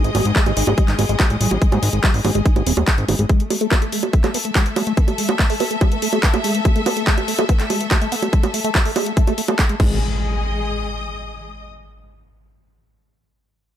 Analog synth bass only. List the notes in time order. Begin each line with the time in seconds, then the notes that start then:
0.04 G#1
0.15 G#1
0.25 G#1
0.46 G#1
0.57 G#1
0.67 G#1
0.88 G#1
0.99 G#1
1.09 G#1
1.30 A1
1.41 A1
1.51 A1
1.72 G#2
1.83 G#1
1.93 G#1
2.14 G#1
2.25 G#1
2.35 G#1
2.56 G#1
2.67 D#1
2.77 D#1
2.98 G#1
3.09 G#1
3.19 G#1
9.80 G#1